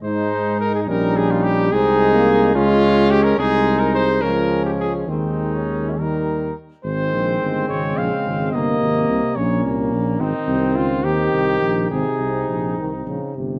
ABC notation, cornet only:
X:1
M:6/8
L:1/16
Q:3/8=71
K:Ab
V:1 name="Cornet"
c4 B A B2 A F G2 | A6 F4 G B | A3 B c2 B3 G A2 | E6 B4 z2 |
c6 d2 f4 | e6 d2 z4 | E4 F2 G6 | A6 z6 |]